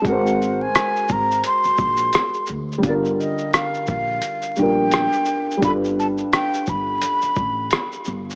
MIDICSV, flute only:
0, 0, Header, 1, 2, 480
1, 0, Start_track
1, 0, Tempo, 697674
1, 32, Time_signature, 4, 2, 24, 8
1, 5745, End_track
2, 0, Start_track
2, 0, Title_t, "Flute"
2, 0, Program_c, 0, 73
2, 48, Note_on_c, 0, 78, 97
2, 423, Note_on_c, 0, 80, 101
2, 433, Note_off_c, 0, 78, 0
2, 770, Note_on_c, 0, 82, 105
2, 780, Note_off_c, 0, 80, 0
2, 1001, Note_off_c, 0, 82, 0
2, 1005, Note_on_c, 0, 84, 104
2, 1691, Note_off_c, 0, 84, 0
2, 1964, Note_on_c, 0, 74, 78
2, 2016, Note_off_c, 0, 74, 0
2, 2200, Note_on_c, 0, 75, 71
2, 2420, Note_off_c, 0, 75, 0
2, 2440, Note_on_c, 0, 77, 89
2, 2660, Note_off_c, 0, 77, 0
2, 2679, Note_on_c, 0, 77, 100
2, 3160, Note_on_c, 0, 79, 103
2, 3171, Note_off_c, 0, 77, 0
2, 3876, Note_off_c, 0, 79, 0
2, 3880, Note_on_c, 0, 83, 114
2, 3933, Note_off_c, 0, 83, 0
2, 4123, Note_on_c, 0, 81, 94
2, 4176, Note_off_c, 0, 81, 0
2, 4366, Note_on_c, 0, 79, 100
2, 4604, Note_on_c, 0, 83, 95
2, 4614, Note_off_c, 0, 79, 0
2, 5558, Note_off_c, 0, 83, 0
2, 5745, End_track
0, 0, End_of_file